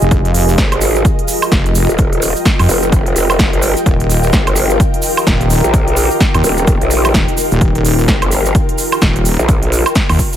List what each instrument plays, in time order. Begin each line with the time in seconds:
Already playing: ambient pad F4 G4 G#4 A#4 D#5
0.02 wobble bass F1, closed hi-hat, shaker
0.11 wobble bass F1, kick, closed hi-hat, shaker
0.25 closed hi-hat
0.34 open hi-hat, shaker
0.49 shaker
0.58 wobble bass G#1, kick, snare, closed hi-hat, shaker
0.72 ambient pad G5, closed hi-hat, high woodblock
0.81 open hi-hat, shaker
0.95 closed hi-hat, shaker
1.05 kick, closed hi-hat, shaker
1.19 closed hi-hat
1.28 open hi-hat, shaker
1.42 high woodblock, shaker
1.52 wobble bass F1, kick, snare, closed hi-hat, shaker
1.66 closed hi-hat
1.75 open hi-hat, shaker
1.89 wobble bass D#1, closed hi-hat, shaker
1.98 kick, closed hi-hat, shaker
2.13 closed hi-hat
2.22 open hi-hat, shaker
2.36 shaker
2.45 kick, snare, closed hi-hat, shaker
2.59 wobble bass F2, open hi-hat, high woodblock
2.69 wobble bass F1, open hi-hat, shaker
2.83 closed hi-hat, shaker
2.92 kick, closed hi-hat, shaker
3.06 closed hi-hat
3.16 wobble bass F1, open hi-hat, shaker
3.30 high woodblock, shaker
3.39 kick, snare, closed hi-hat, shaker
3.53 wobble bass G1, closed hi-hat
3.62 open hi-hat, shaker
3.77 closed hi-hat, shaker
3.86 wobble bass D#1, ambient pad D#4 G4, kick, closed hi-hat, shaker
4.00 closed hi-hat
4.10 open hi-hat, shaker
4.23 shaker
4.33 wobble bass G1, kick, snare, closed hi-hat, shaker
4.47 closed hi-hat, high woodblock
4.56 open hi-hat, shaker
4.70 closed hi-hat, shaker
4.80 kick, closed hi-hat, shaker
4.94 closed hi-hat
5.02 open hi-hat, shaker
5.17 high woodblock, shaker
5.27 wobble bass D#1, kick, snare, closed hi-hat, shaker
5.41 closed hi-hat
5.50 open hi-hat, shaker
5.64 wobble bass A#1, closed hi-hat, shaker
5.74 kick, closed hi-hat, shaker
5.88 closed hi-hat
5.97 open hi-hat, shaker
6.11 shaker
6.20 kick, snare, closed hi-hat, shaker
6.34 wobble bass D#2, closed hi-hat, high woodblock
6.44 wobble bass D#1, open hi-hat, shaker
6.57 closed hi-hat, shaker
6.67 kick, closed hi-hat, shaker
6.81 wobble bass A#1, closed hi-hat
6.90 open hi-hat, shaker
7.05 high woodblock, shaker
7.14 wobble bass D#1, kick, snare, closed hi-hat, shaker
7.28 closed hi-hat
7.37 open hi-hat, shaker
7.52 wobble bass D#1, closed hi-hat, shaker
7.61 wobble bass D#1, kick, closed hi-hat, shaker
7.75 closed hi-hat
7.85 open hi-hat, shaker
7.99 shaker
8.08 wobble bass G1, kick, snare, closed hi-hat, shaker
8.22 closed hi-hat, high woodblock
8.31 open hi-hat, shaker
8.45 closed hi-hat, shaker
8.55 kick, closed hi-hat, shaker
8.69 closed hi-hat
8.78 open hi-hat, shaker
8.92 high woodblock, shaker
9.01 wobble bass D#1, kick, snare, closed hi-hat, shaker
9.16 closed hi-hat
9.25 open hi-hat, shaker
9.39 wobble bass A#1, closed hi-hat, shaker
9.49 kick, closed hi-hat, shaker
9.63 closed hi-hat
9.72 open hi-hat, shaker
9.86 closed hi-hat, high woodblock, shaker
9.95 kick, snare, closed hi-hat, shaker
10.09 wobble bass D#2, open hi-hat, high woodblock
10.19 kick, open hi-hat, shaker
10.33 closed hi-hat, shaker